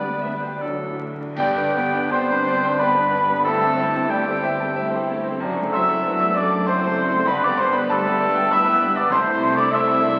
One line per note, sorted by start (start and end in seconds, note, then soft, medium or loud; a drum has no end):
0.00 0.58 D2 medium
0.00 1.11 D2 medium
0.00 1.12 D2 medium
0.00 0.62 D3 medium
0.00 0.65 D3 soft
0.00 0.58 G3 medium
0.00 0.64 G3 medium
0.00 0.65 G3 medium
0.00 0.08 B3 medium
0.00 0.58 B3 medium
0.00 0.61 D4 medium
0.00 0.62 D4 medium
0.00 0.18 G4 soft
0.00 0.63 B4 medium
0.00 0.19 D5 medium
0.00 0.61 D5 medium
0.08 0.37 B3 soft
0.22 0.55 B4 medium
0.22 0.31 E5 medium
0.33 0.42 D5 medium
0.42 0.52 C5 soft
0.42 0.63 G5 soft
0.53 0.63 D5 medium
0.61 1.35 D2 medium
0.61 1.02 F#3 soft
0.61 1.12 F#3 medium
0.61 1.12 D4 medium
0.61 1.01 A4 medium
0.83 1.13 A2 soft
1.02 1.31 A3 soft
1.21 1.38 D4 soft
1.36 5.38 G1 medium
1.36 5.38 G2 medium
1.36 2.08 G3 loud
1.36 1.54 B3 medium
1.36 1.75 D4 medium
1.36 2.12 G4 loud
1.36 2.08 G4 medium
1.36 1.54 G4 medium
1.36 1.55 D5 medium
1.36 2.12 G5 loud
1.36 2.09 G5 loud
1.36 concert bass drum medium
1.36 crash medium
1.40 3.42 G2 medium
1.40 2.09 G4 medium
1.40 2.09 D5 medium
1.56 1.86 D3 medium
1.56 1.75 D4 medium
1.56 1.75 B4 medium
1.74 2.13 B3 medium
1.74 1.94 B3 medium
1.74 2.06 B3 medium
1.74 1.94 G4 medium
1.74 1.94 D5 medium
1.93 2.24 D4 medium
1.93 2.13 D4 medium
1.93 2.12 B4 medium
2.11 2.29 B3 medium
2.11 2.80 C4 loud
2.11 3.43 D4 medium
2.11 2.28 G4 medium
2.11 2.80 C5 loud
2.11 2.82 C5 loud
2.11 2.76 C5 medium
2.11 2.29 D5 medium
2.11 2.62 G5 medium
2.11 2.80 C6 loud
2.11 2.76 C6 medium
2.15 2.42 G4 medium
2.30 2.48 D4 medium
2.30 2.47 B4 medium
2.30 2.58 B4 medium
2.47 2.64 B3 medium
2.47 2.64 G4 medium
2.47 2.63 D5 medium
2.47 2.73 D5 medium
2.63 2.81 D4 medium
2.63 2.79 B4 medium
2.63 2.81 B4 medium
2.63 2.81 G5 medium
2.78 3.46 B3 medium
2.78 2.96 B3 medium
2.78 2.96 G4 medium
2.78 3.44 B4 medium
2.78 3.45 B4 medium
2.78 2.94 D5 medium
2.78 3.05 D5 medium
2.78 3.43 B5 medium
2.78 3.41 B5 medium
2.83 2.93 B4 medium
2.83 3.42 G5 medium
2.95 3.13 D4 medium
2.95 3.21 B4 medium
2.95 3.12 B4 medium
2.95 3.13 B4 medium
3.11 3.30 B3 medium
3.11 3.39 D4 medium
3.11 3.29 G4 medium
3.11 3.28 D5 medium
3.28 3.45 B3 medium
3.28 3.46 D4 medium
3.28 3.44 B4 medium
3.28 3.45 B4 medium
3.43 5.38 G2 medium
3.43 4.09 A3 loud
3.43 3.61 A3 medium
3.43 3.79 C4 medium
3.43 3.60 E4 medium
3.43 3.60 G4 medium
3.43 4.12 A4 medium
3.43 4.11 A4 loud
3.43 4.11 A5 loud
3.43 4.07 A5 medium
3.48 4.07 A4 medium
3.48 4.08 E5 medium
3.59 3.86 G3 medium
3.59 3.78 C4 medium
3.59 3.76 G4 medium
3.59 3.78 A4 medium
3.76 3.94 A3 medium
3.76 4.03 C4 medium
3.76 3.93 E4 medium
3.76 4.12 E4 loud
3.76 3.94 G4 medium
3.93 4.10 C4 medium
3.93 4.20 E4 medium
3.93 4.10 G4 medium
3.93 4.11 A4 medium
4.08 5.09 G3 medium
4.08 4.25 A3 medium
4.08 4.45 D4 medium
4.08 4.24 E4 medium
4.08 5.09 G4 medium
4.08 4.26 G4 medium
4.08 5.06 G4 medium
4.08 4.35 A4 medium
4.08 4.42 E5 medium
4.08 5.09 G5 medium
4.08 5.05 G5 medium
4.24 4.43 C4 medium
4.24 4.42 G4 medium
4.24 4.43 A4 medium
4.24 4.52 C5 medium
4.41 4.59 A3 medium
4.41 4.78 C4 medium
4.41 4.58 E4 medium
4.41 4.60 G4 medium
4.41 4.69 E5 medium
4.57 4.76 C4 medium
4.57 4.75 G4 medium
4.57 4.86 A5 medium
4.62 4.77 A4 medium
4.75 4.92 A3 medium
4.75 4.91 E4 medium
4.75 5.42 E4 medium
4.75 4.93 G4 medium
4.75 5.03 E5 medium
4.90 5.10 G4 medium
4.90 5.18 C5 medium
4.95 5.10 C4 medium
4.95 5.11 A4 medium
5.07 5.34 E4 medium
5.07 5.26 E4 medium
5.12 5.27 A3 medium
5.12 5.27 G4 medium
5.23 5.41 C4 medium
5.28 5.43 C4 medium
5.28 5.44 G4 medium
5.28 5.44 A4 medium
5.40 7.24 F#1 medium
5.40 7.31 F#1 medium
5.40 7.23 F#2 medium
5.40 7.25 F#2 medium
5.40 5.57 D4 medium
5.40 5.78 D4 medium
5.44 5.58 F#3 medium
5.44 5.58 F#4 medium
5.56 5.83 F#3 medium
5.56 5.75 A3 medium
5.56 5.74 C4 medium
5.62 5.76 A4 medium
5.72 5.90 F#3 medium
5.72 5.98 A3 medium
5.72 5.90 D4 medium
5.72 6.32 E4 medium
5.72 6.38 E5 loud
5.72 6.33 E5 medium
5.72 6.39 E5 loud
5.72 6.32 C6 medium
5.72 6.32 E6 loud
5.72 6.37 E6 loud
5.76 6.08 C4 medium
5.76 5.92 F#4 medium
5.89 6.07 A3 medium
5.89 6.06 C4 medium
5.89 6.14 D4 medium
5.89 6.06 A4 medium
6.03 6.41 B3 medium
6.03 6.19 D4 medium
6.03 6.21 F#4 medium
6.03 6.29 A4 medium
6.07 6.21 F#3 medium
6.20 6.38 A3 medium
6.20 6.37 C4 medium
6.20 6.46 D4 medium
6.20 6.38 A4 medium
6.34 6.52 D4 medium
6.34 6.67 D4 medium
6.34 6.36 D5 medium
6.34 6.68 D5 medium
6.34 6.65 D5 medium
6.34 6.66 D5 medium
6.34 6.68 D6 medium
6.34 6.65 D6 medium
6.39 6.53 F#3 medium
6.39 6.71 A3 medium
6.39 6.53 F#4 medium
6.50 6.67 C4 medium
6.50 6.68 A4 medium
6.50 6.67 A5 medium
6.55 6.69 A3 medium
6.66 7.28 C4 loud
6.66 6.81 D4 medium
6.66 7.32 E4 loud
6.66 6.82 F#4 medium
6.66 7.27 C5 loud
6.66 7.29 C5 loud
6.66 7.25 C5 medium
6.66 6.91 D5 medium
6.66 7.25 A5 medium
6.66 7.27 C6 loud
6.66 7.24 C6 loud
6.71 6.83 F#3 medium
6.81 6.97 C4 medium
6.81 7.06 A4 medium
6.81 6.99 A4 medium
6.85 6.99 A3 medium
6.96 7.21 D4 medium
6.96 7.13 D4 medium
7.00 7.14 F#3 medium
7.00 7.14 F#4 medium
7.12 7.28 A3 medium
7.12 7.29 A3 medium
7.12 7.28 C4 medium
7.12 7.29 A4 medium
7.26 9.11 G1 medium
7.26 9.06 G2 loud
7.26 9.12 G2 medium
7.26 7.44 B3 loud
7.26 7.43 D4 medium
7.26 7.46 B4 loud
7.26 7.43 B4 medium
7.26 7.42 B5 loud
7.26 7.45 B5 loud
7.30 8.96 G1 medium
7.30 7.44 G3 medium
7.30 8.28 D4 medium
7.30 7.44 B4 medium
7.42 7.68 D3 medium
7.42 7.60 B3 medium
7.42 7.60 D4 medium
7.42 7.58 D5 medium
7.42 7.60 D5 medium
7.42 7.62 D5 medium
7.42 7.58 D6 loud
7.42 7.61 D6 loud
7.46 7.61 B3 medium
7.46 7.61 G4 medium
7.57 7.76 G3 medium
7.57 7.84 B3 medium
7.57 7.75 C4 loud
7.57 7.74 C5 medium
7.57 7.77 C5 loud
7.57 7.79 C5 loud
7.57 7.73 C6 loud
7.57 7.76 C6 medium
7.62 7.76 D4 medium
7.62 7.76 B4 medium
7.73 7.90 B3 medium
7.73 7.91 B3 medium
7.73 8.00 D4 medium
7.73 7.89 B4 medium
7.73 7.90 B4 medium
7.73 7.88 B5 loud
7.73 7.92 B5 medium
7.77 7.92 B3 medium
7.77 7.92 G4 medium
7.77 7.91 B4 medium
7.89 8.07 G3 medium
7.89 8.51 A3 loud
7.89 8.16 G4 medium
7.89 8.48 A4 medium
7.89 8.55 A4 loud
7.89 8.51 A4 loud
7.89 8.06 B4 medium
7.89 8.47 A5 loud
7.89 8.53 A5 loud
7.94 8.07 D4 medium
8.05 8.23 B3 medium
8.05 8.23 G4 medium
8.05 8.31 B4 medium
8.20 8.37 G3 medium
8.20 8.38 D4 medium
8.20 8.38 B4 medium
8.20 8.45 D5 medium
8.35 8.53 B3 medium
8.35 8.53 G4 medium
8.35 8.60 G5 medium
8.39 8.53 B3 medium
8.50 9.15 B3 medium
8.50 8.96 E4 loud
8.50 8.66 B4 medium
8.50 8.75 D5 medium
8.50 8.98 E5 loud
8.50 8.94 E5 medium
8.50 8.98 E5 loud
8.50 8.94 B5 medium
8.50 8.93 E6 loud
8.50 8.97 E6 loud
8.54 8.68 G3 medium
8.54 8.67 D4 medium
8.65 8.82 B3 medium
8.65 8.82 G4 medium
8.65 8.89 B4 medium
8.70 8.83 B3 medium
8.81 9.05 D4 medium
8.81 8.98 D4 medium
8.81 8.96 B4 medium
8.86 8.99 G3 medium
8.96 9.12 B3 medium
8.96 9.13 B3 medium
8.96 9.12 D4 medium
8.96 9.13 G4 medium
8.96 9.14 D5 medium
8.96 9.11 D5 medium
8.96 9.12 D5 medium
8.96 9.11 D6 medium
8.96 9.11 D6 loud
9.00 9.13 B3 medium
9.10 10.20 C2 loud
9.10 10.20 C2 medium
9.10 10.20 C3 medium
9.10 9.56 C4 loud
9.10 9.74 E4 loud
9.10 10.20 A4 medium
9.10 9.58 C5 loud
9.10 9.59 C5 loud
9.10 9.55 C5 medium
9.10 9.54 C6 loud
9.10 9.57 C6 loud
9.14 10.20 A3 medium
9.14 10.20 E4 medium
9.14 9.56 A5 medium
9.28 9.52 C3 medium
9.43 9.67 A3 loud
9.56 9.73 D4 loud
9.56 9.82 E4 medium
9.56 9.73 D5 loud
9.56 9.75 D5 loud
9.56 9.73 D5 medium
9.56 9.71 D6 loud
9.56 9.72 D6 loud
9.70 10.03 C4 loud
9.70 10.20 E4 loud
9.70 10.20 E5 loud
9.70 10.20 E6 loud
9.74 9.98 A4 medium
9.74 10.03 E5 medium
9.74 10.20 C6 medium
9.74 10.20 E6 loud
9.88 10.12 E4 medium
10.02 10.20 D4 medium
10.02 10.20 E5 medium